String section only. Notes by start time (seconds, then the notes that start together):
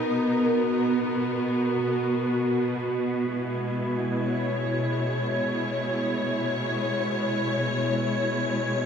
Already playing: B2 B3 D#4 A#4
0.20 F#4
3.24 G#3 E4
4.28 C#5